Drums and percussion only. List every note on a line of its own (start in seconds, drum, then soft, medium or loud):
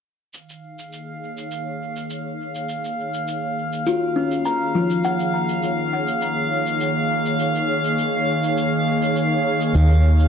0.34 cabasa soft
0.49 cabasa soft
0.79 cabasa soft
0.93 cabasa soft
1.38 cabasa soft
1.51 cabasa soft
1.96 cabasa soft
2.10 cabasa soft
2.55 cabasa soft
2.69 cabasa soft
2.85 cabasa soft
3.14 cabasa soft
3.28 cabasa soft
3.73 cabasa soft
3.87 cabasa soft
4.32 cabasa soft
4.45 cabasa soft
4.90 cabasa soft
5.04 cabasa soft
5.20 cabasa soft
5.49 cabasa soft
5.63 cabasa soft
6.08 cabasa soft
6.22 cabasa soft
6.67 cabasa soft
6.81 cabasa soft
7.26 cabasa soft
7.40 cabasa soft
7.55 cabasa soft
7.84 cabasa soft
7.98 cabasa soft
8.44 cabasa soft
8.57 cabasa soft
9.02 cabasa soft
9.16 cabasa soft
9.61 cabasa soft
9.75 cabasa soft
9.91 cabasa soft
10.20 cabasa soft